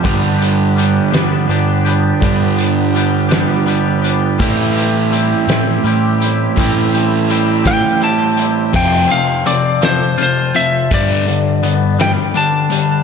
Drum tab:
CC |------|------|------|------|
HH |xxxxxx|xxxxxx|xxxxxx|xxxxxx|
SD |---o--|---o--|---o--|---o--|
BD |o-----|o-----|o-----|o--o--|

CC |x-----|------|
HH |-xxxxx|xxxxxx|
SD |---o--|---o--|
BD |o-----|o-----|